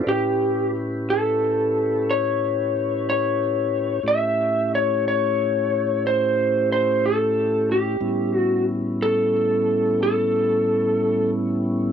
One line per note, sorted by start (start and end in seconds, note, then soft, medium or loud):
0.01 0.12 C5 medium
0.01 0.13 D5 soft
0.07 4.00 A2 medium
0.07 4.00 C#4 medium
0.07 4.00 E4 medium
0.07 4.00 G4 medium
0.07 0.70 G4 medium
0.07 4.00 B4 medium
1.10 2.10 A4 medium
2.11 3.08 C#5 medium
3.10 4.02 C#5 medium
4.03 7.97 A2 medium
4.03 7.97 A3 medium
4.03 7.97 C#4 medium
4.03 7.97 E4 medium
4.03 7.97 G4 medium
4.08 4.74 E5 medium
4.75 5.06 C#5 medium
5.08 6.06 C#5 medium
6.07 6.71 C5 medium
6.72 7.04 C5 medium
7.06 7.71 A4 medium
7.72 8.34 G4 medium
8.01 11.92 A2 medium
8.01 11.92 G3 medium
8.01 11.92 B3 medium
8.01 11.92 C#4 medium
8.01 11.92 E4 medium
8.34 8.65 F#4 medium
9.02 10.02 A4 loud
10.03 11.30 A4 loud